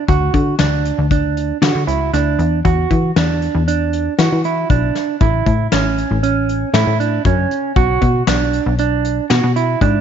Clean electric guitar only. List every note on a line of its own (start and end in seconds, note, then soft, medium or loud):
0.09 0.54 F#4 medium
0.60 1.05 D4 medium
1.11 1.57 D4 medium
1.62 1.85 F#4 medium
1.87 2.11 E4 medium
2.13 2.59 D4 medium
2.65 3.10 F#4 medium
3.17 3.62 D4 medium
3.68 4.13 D4 medium
4.19 4.42 F#4 medium
4.45 4.68 E4 medium
4.70 5.15 D4 medium
5.21 5.66 E4 medium
5.72 6.18 C#4 medium
6.23 6.69 C#4 medium
6.74 6.97 E4 medium
7.00 7.23 D4 medium
7.26 7.71 C#4 medium
7.76 8.22 F#4 loud
8.28 8.73 D4 medium
8.79 9.25 D4 medium
9.30 9.53 F#4 medium
9.56 9.79 E4 medium
9.82 10.01 D4 medium